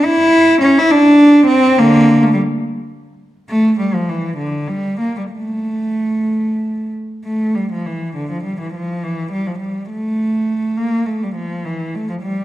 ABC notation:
X:1
M:6/8
L:1/16
Q:3/8=69
K:Aphr
V:1 name="Cello" clef=bass
E4 ^C E D4 =C2 | [D,B,]3 A, G,2 z6 | A,2 G, F, E,2 D,2 G,2 B, G, | A,8- A,2 z2 |
A,2 G, F, E,2 D, F, G, E, F,2 | E,2 G, F, G,2 A,6 | B,2 A, G, F,2 E,2 A, F, G,2 |]